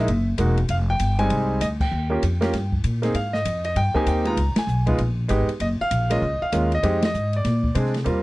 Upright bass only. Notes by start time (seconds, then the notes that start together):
0.08 F#1
0.38 E1
0.69 F1
1.00 G1
1.30 C2
1.61 D2
1.91 D#2
2.23 F2
2.53 G2
2.84 A#2
3.14 G#2
3.45 F2
3.76 G2
3.95 muted upright bass stroke
4.06 D#2
4.37 C#2
4.55 muted upright bass stroke
4.67 B1
4.98 A#1
5.29 G#1
5.48 muted upright bass stroke
5.60 F#1
5.80 muted upright bass stroke
5.91 A#1
6.22 C#2
6.41 muted upright bass stroke
6.53 D#2
6.83 F2
7.14 G#2
7.45 A#2
7.75 C3
8.06 D#2